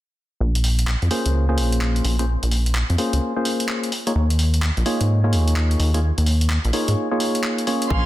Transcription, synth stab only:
0, 0, Header, 1, 2, 480
1, 0, Start_track
1, 0, Key_signature, -5, "minor"
1, 0, Tempo, 468750
1, 415, Time_signature, 4, 2, 24, 8
1, 8250, End_track
2, 0, Start_track
2, 0, Title_t, "Synth stab"
2, 0, Program_c, 0, 62
2, 1134, Note_on_c, 0, 58, 86
2, 1134, Note_on_c, 0, 61, 76
2, 1134, Note_on_c, 0, 65, 75
2, 1134, Note_on_c, 0, 68, 77
2, 1134, Note_on_c, 0, 72, 87
2, 1490, Note_off_c, 0, 58, 0
2, 1490, Note_off_c, 0, 61, 0
2, 1490, Note_off_c, 0, 65, 0
2, 1490, Note_off_c, 0, 68, 0
2, 1490, Note_off_c, 0, 72, 0
2, 1525, Note_on_c, 0, 58, 90
2, 1525, Note_on_c, 0, 61, 78
2, 1525, Note_on_c, 0, 65, 82
2, 1525, Note_on_c, 0, 68, 83
2, 1525, Note_on_c, 0, 72, 96
2, 2209, Note_off_c, 0, 65, 0
2, 2209, Note_off_c, 0, 68, 0
2, 2210, Note_off_c, 0, 58, 0
2, 2210, Note_off_c, 0, 61, 0
2, 2210, Note_off_c, 0, 72, 0
2, 2245, Note_on_c, 0, 58, 76
2, 2245, Note_on_c, 0, 61, 70
2, 2245, Note_on_c, 0, 65, 69
2, 2245, Note_on_c, 0, 68, 67
2, 2245, Note_on_c, 0, 72, 84
2, 2301, Note_off_c, 0, 58, 0
2, 2301, Note_off_c, 0, 61, 0
2, 2301, Note_off_c, 0, 65, 0
2, 2301, Note_off_c, 0, 68, 0
2, 2301, Note_off_c, 0, 72, 0
2, 3054, Note_on_c, 0, 61, 73
2, 3054, Note_on_c, 0, 65, 77
2, 3054, Note_on_c, 0, 68, 75
2, 3054, Note_on_c, 0, 72, 95
2, 3055, Note_on_c, 0, 58, 86
2, 3410, Note_off_c, 0, 58, 0
2, 3410, Note_off_c, 0, 61, 0
2, 3410, Note_off_c, 0, 65, 0
2, 3410, Note_off_c, 0, 68, 0
2, 3410, Note_off_c, 0, 72, 0
2, 3445, Note_on_c, 0, 61, 82
2, 3446, Note_on_c, 0, 58, 87
2, 3446, Note_on_c, 0, 65, 81
2, 3446, Note_on_c, 0, 68, 79
2, 3446, Note_on_c, 0, 72, 96
2, 4004, Note_off_c, 0, 58, 0
2, 4004, Note_off_c, 0, 61, 0
2, 4004, Note_off_c, 0, 65, 0
2, 4004, Note_off_c, 0, 68, 0
2, 4004, Note_off_c, 0, 72, 0
2, 4165, Note_on_c, 0, 68, 68
2, 4166, Note_on_c, 0, 58, 78
2, 4166, Note_on_c, 0, 63, 70
2, 4166, Note_on_c, 0, 65, 71
2, 4166, Note_on_c, 0, 73, 86
2, 4221, Note_off_c, 0, 68, 0
2, 4222, Note_off_c, 0, 58, 0
2, 4222, Note_off_c, 0, 63, 0
2, 4222, Note_off_c, 0, 65, 0
2, 4222, Note_off_c, 0, 73, 0
2, 4974, Note_on_c, 0, 58, 83
2, 4974, Note_on_c, 0, 63, 78
2, 4974, Note_on_c, 0, 65, 75
2, 4974, Note_on_c, 0, 68, 74
2, 4974, Note_on_c, 0, 73, 93
2, 5329, Note_off_c, 0, 73, 0
2, 5330, Note_off_c, 0, 58, 0
2, 5330, Note_off_c, 0, 63, 0
2, 5330, Note_off_c, 0, 65, 0
2, 5330, Note_off_c, 0, 68, 0
2, 5365, Note_on_c, 0, 58, 94
2, 5365, Note_on_c, 0, 63, 81
2, 5365, Note_on_c, 0, 65, 78
2, 5365, Note_on_c, 0, 68, 82
2, 5365, Note_on_c, 0, 73, 99
2, 6049, Note_off_c, 0, 63, 0
2, 6050, Note_off_c, 0, 58, 0
2, 6050, Note_off_c, 0, 65, 0
2, 6050, Note_off_c, 0, 68, 0
2, 6050, Note_off_c, 0, 73, 0
2, 6085, Note_on_c, 0, 58, 79
2, 6085, Note_on_c, 0, 63, 66
2, 6085, Note_on_c, 0, 65, 71
2, 6085, Note_on_c, 0, 68, 68
2, 6085, Note_on_c, 0, 73, 80
2, 6141, Note_off_c, 0, 58, 0
2, 6141, Note_off_c, 0, 63, 0
2, 6141, Note_off_c, 0, 65, 0
2, 6141, Note_off_c, 0, 68, 0
2, 6141, Note_off_c, 0, 73, 0
2, 6893, Note_on_c, 0, 73, 91
2, 6894, Note_on_c, 0, 58, 83
2, 6894, Note_on_c, 0, 63, 75
2, 6894, Note_on_c, 0, 65, 75
2, 6894, Note_on_c, 0, 68, 77
2, 7249, Note_off_c, 0, 58, 0
2, 7249, Note_off_c, 0, 63, 0
2, 7249, Note_off_c, 0, 65, 0
2, 7249, Note_off_c, 0, 68, 0
2, 7249, Note_off_c, 0, 73, 0
2, 7285, Note_on_c, 0, 58, 94
2, 7285, Note_on_c, 0, 63, 78
2, 7285, Note_on_c, 0, 65, 83
2, 7285, Note_on_c, 0, 68, 80
2, 7285, Note_on_c, 0, 73, 99
2, 7837, Note_off_c, 0, 58, 0
2, 7837, Note_off_c, 0, 63, 0
2, 7837, Note_off_c, 0, 65, 0
2, 7837, Note_off_c, 0, 68, 0
2, 7837, Note_off_c, 0, 73, 0
2, 7854, Note_on_c, 0, 58, 74
2, 7854, Note_on_c, 0, 65, 69
2, 7854, Note_on_c, 0, 68, 66
2, 7854, Note_on_c, 0, 73, 81
2, 7855, Note_on_c, 0, 61, 69
2, 8250, Note_off_c, 0, 58, 0
2, 8250, Note_off_c, 0, 61, 0
2, 8250, Note_off_c, 0, 65, 0
2, 8250, Note_off_c, 0, 68, 0
2, 8250, Note_off_c, 0, 73, 0
2, 8250, End_track
0, 0, End_of_file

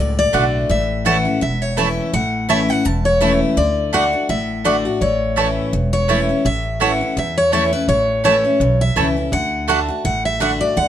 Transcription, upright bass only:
0, 0, Header, 1, 2, 480
1, 0, Start_track
1, 0, Key_signature, 3, "major"
1, 0, Tempo, 359712
1, 929, Time_signature, 4, 2, 24, 8
1, 14518, End_track
2, 0, Start_track
2, 0, Title_t, "Upright bass"
2, 0, Program_c, 0, 32
2, 0, Note_on_c, 0, 37, 87
2, 378, Note_off_c, 0, 37, 0
2, 452, Note_on_c, 0, 35, 85
2, 859, Note_off_c, 0, 35, 0
2, 930, Note_on_c, 0, 33, 92
2, 1680, Note_off_c, 0, 33, 0
2, 1890, Note_on_c, 0, 28, 77
2, 2640, Note_off_c, 0, 28, 0
2, 2848, Note_on_c, 0, 33, 90
2, 3599, Note_off_c, 0, 33, 0
2, 3809, Note_on_c, 0, 28, 85
2, 4559, Note_off_c, 0, 28, 0
2, 4763, Note_on_c, 0, 38, 88
2, 5515, Note_off_c, 0, 38, 0
2, 5728, Note_on_c, 0, 33, 74
2, 6478, Note_off_c, 0, 33, 0
2, 6685, Note_on_c, 0, 33, 95
2, 7436, Note_off_c, 0, 33, 0
2, 7642, Note_on_c, 0, 28, 80
2, 8394, Note_off_c, 0, 28, 0
2, 8605, Note_on_c, 0, 33, 92
2, 9356, Note_off_c, 0, 33, 0
2, 9563, Note_on_c, 0, 40, 83
2, 10315, Note_off_c, 0, 40, 0
2, 10515, Note_on_c, 0, 33, 90
2, 11270, Note_off_c, 0, 33, 0
2, 11476, Note_on_c, 0, 35, 94
2, 11888, Note_off_c, 0, 35, 0
2, 11961, Note_on_c, 0, 37, 85
2, 12372, Note_off_c, 0, 37, 0
2, 12436, Note_on_c, 0, 38, 96
2, 13191, Note_off_c, 0, 38, 0
2, 13406, Note_on_c, 0, 33, 75
2, 14158, Note_off_c, 0, 33, 0
2, 14366, Note_on_c, 0, 38, 90
2, 14518, Note_off_c, 0, 38, 0
2, 14518, End_track
0, 0, End_of_file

